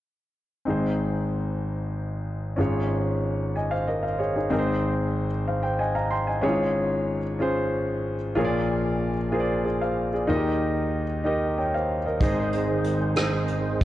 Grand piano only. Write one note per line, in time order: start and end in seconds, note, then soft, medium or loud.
0.65 2.55 G#1 soft
0.65 2.55 G#2 soft
0.65 2.54 C4 soft
0.65 2.55 D#4 soft
0.65 2.56 G#4 soft
0.70 2.57 C5 soft
2.57 4.47 G#1 medium
2.57 4.47 G#2 medium
2.57 4.46 C#4 medium
2.57 3.53 F4 soft
2.57 3.54 G#4 soft
2.61 3.54 C#5 medium
3.56 3.71 D#5 soft
3.56 3.71 G#5 soft
3.71 3.87 C5 soft
3.71 3.87 F5 medium
3.88 4.03 A#4 soft
3.88 4.03 D#5 soft
4.03 4.19 C5 soft
4.03 4.18 F5 soft
4.19 4.34 G#4 soft
4.19 4.34 C#5 soft
4.36 4.49 D#4 soft
4.36 4.50 G#4 soft
4.50 6.39 G#1 medium
4.50 6.39 G#2 medium
4.50 5.25 C4 medium
4.50 5.26 D#4 medium
4.50 5.26 G#4 medium
4.50 4.59 A#4 medium
4.59 5.29 C5 medium
5.48 5.62 C5 soft
5.48 5.63 F5 soft
5.63 5.79 C5 soft
5.63 5.78 G5 medium
5.79 5.95 D#5 soft
5.79 5.94 G#5 soft
5.95 6.11 F5 soft
5.95 6.10 A#5 soft
6.11 6.27 G5 soft
6.11 6.26 C6 medium
6.27 6.58 D#5 soft
6.27 6.58 G#5 soft
6.41 8.31 G#1 medium
6.41 8.31 G#2 medium
6.41 7.17 C#4 medium
6.41 6.50 E4 soft
6.41 7.18 G#4 medium
6.41 7.18 C#5 medium
6.49 7.21 F4 medium
7.39 8.14 C#4 medium
7.39 8.14 F4 medium
7.39 8.15 G#4 soft
7.39 8.15 C5 medium
8.35 10.24 A#1 medium
8.35 10.24 A#2 medium
8.35 9.10 F4 medium
8.35 9.11 G#4 medium
8.35 9.11 A#4 medium
8.35 8.43 C#5 medium
8.44 9.15 D5 medium
9.32 10.06 F4 medium
9.32 9.64 G#4 medium
9.32 9.64 A#4 soft
9.32 9.39 C5 soft
9.40 9.63 D5 medium
9.64 9.80 G#4 soft
9.64 9.79 D5 soft
9.81 10.12 C5 soft
9.81 10.11 F5 medium
10.13 10.43 G#4 soft
10.13 10.43 D5 soft
10.27 12.17 D#2 medium
10.27 12.17 D#3 medium
10.27 11.02 D#4 medium
10.27 10.35 F4 soft
10.27 11.03 A#4 medium
10.27 11.03 D#5 medium
10.35 11.06 G4 medium
11.24 11.99 D#4 medium
11.24 11.99 G4 medium
11.24 11.57 A#4 soft
11.24 11.57 D#5 medium
11.58 11.73 C#5 soft
11.58 11.72 G5 soft
11.74 12.04 C5 soft
11.74 12.04 F5 soft
12.06 12.36 A#4 soft
12.06 12.22 D#5 soft
12.21 13.84 G#1 medium
12.21 13.84 G#2 medium
12.21 12.95 D#4 medium
12.21 12.95 G#4 medium
12.21 12.96 C5 medium
12.21 12.96 D#5 medium
13.16 13.84 D#4 medium
13.16 13.84 G#4 medium
13.16 13.84 C5 medium
13.16 13.84 D#5 medium